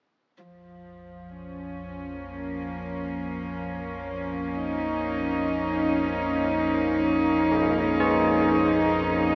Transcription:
0.42 synth drone A#1 F2, cello section F3
1.30 cello section C#4
2.13 cello section A#3
4.54 cello section D#4
7.51 church bells G#2
8.00 church bells G#4

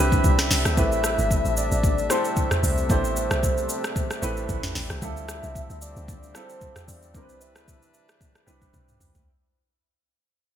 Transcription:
Already playing: log drum bass C2, brass ensemble D3 G3 C4 D4 E5, grand piano C4 D4
0.00 grand piano E4 G4 B4
0.12 kick, shaker
0.24 log drum bass C2, kick, shaker
0.39 cross-stick, snare, shaker
0.51 log drum bass C2, snare, open hi-hat, shaker
0.65 log drum bass D2, cross-stick, shaker
0.77 log drum bass A1, brass ensemble C3 A3, grand piano A3 C4 E4 G4 B4, soft synth lead E5, kick, shaker
0.92 shaker
1.04 cross-stick, shaker
1.19 log drum bass G1, shaker
1.31 kick, shaker
1.45 log drum bass A1, shaker
1.57 soft synth lead D5, shaker
1.72 log drum bass A1, shaker
1.84 kick, shaker
1.98 shaker
2.09 grand piano A3 C4 E4 G4 A4, soft synth lead C5, cross-stick, shaker
2.25 shaker
2.37 kick, shaker
2.51 cross-stick, mid tom, shaker
2.63 log drum bass C2, soft synth lead C5, open hi-hat, shaker
2.78 shaker
2.89 log drum bass A1, grand piano A3 B3 E4 G4 C5, soft synth lead D5, kick, shaker
2.96 grand piano C4
3.04 shaker
3.16 soft synth lead C5, shaker
3.31 log drum bass C2, cross-stick, shaker
3.43 kick, shaker
3.58 shaker
3.69 shaker
3.84 cross-stick, shaker
3.96 kick, shaker
4.11 cross-stick, shaker
4.22 log drum bass A1, grand piano A3 C4 E4 G4 B4, shaker
4.37 shaker
4.49 log drum bass A1, kick, shaker
4.63 snare, mid tom, shaker
4.75 log drum bass A1, snare, open hi-hat, shaker
4.90 log drum bass C2, cross-stick, shaker
5.01 log drum bass D2, brass ensemble D3 F3 G3 C4, grand piano G3 C4 E4 F4 A4, soft synth lead E5, kick, shaker
5.17 shaker
5.29 cross-stick, shaker
5.43 log drum bass C2, shaker
5.55 kick, shaker
5.70 log drum bass D2, shaker
5.82 soft synth lead D5, shaker
5.96 log drum bass D2, shaker
6.08 kick, shaker
6.23 shaker
6.34 grand piano G3 C4 E4 F4 A4, soft synth lead C5, cross-stick, shaker
6.49 shaker
6.61 kick, shaker
6.76 cross-stick, mid tom, shaker
6.88 log drum bass E2, soft synth lead D5, open hi-hat, shaker
7.02 shaker
7.14 log drum bass C2, brass ensemble C3 E3 D4 B4, grand piano G3 C4 D4 E4 A#4, soft synth lead C5, kick, shaker
7.22 grand piano B4
7.29 shaker
7.41 soft synth lead E5, shaker
7.56 log drum bass D2, cross-stick, shaker
7.68 kick, shaker
7.82 shaker
7.94 shaker
8.09 cross-stick, shaker
8.21 kick, shaker
8.35 cross-stick, shaker
8.46 log drum bass C2, grand piano G3 C4 D4 E4 B4, shaker
8.62 kick, shaker
8.74 log drum bass C2, kick, high tom, shaker
8.88 mid tom, shaker
9.00 log drum bass C2, mid tom, open hi-hat, shaker
9.15 log drum bass D2, floor tom, shaker

